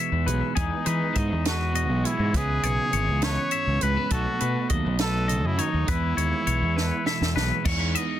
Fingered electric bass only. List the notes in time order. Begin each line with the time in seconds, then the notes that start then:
0.12 E2
0.27 B1
0.57 E2
0.86 E3
1.16 G#2
1.32 E2
1.90 B1
2.19 G#2
2.34 C#2
2.63 B1
2.93 G#1
3.09 C#2
3.67 C#2
3.83 C#2
4.11 B1
4.41 B2
4.70 D#2
4.86 B1
5.45 F#2
5.74 D#2
5.88 E2
6.17 D#2
6.47 B1
6.62 E2
7.21 E2
7.36 B1
7.65 E2